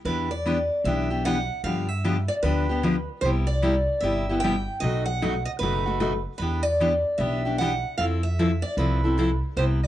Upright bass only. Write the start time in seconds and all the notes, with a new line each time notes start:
0.05 E2
0.84 B1
1.64 G2
2.43 D2
3.22 C2
4.03 G1
4.82 B1
5.61 F#1
6.40 E2
7.19 B1
7.99 F2
8.77 C2
9.56 C2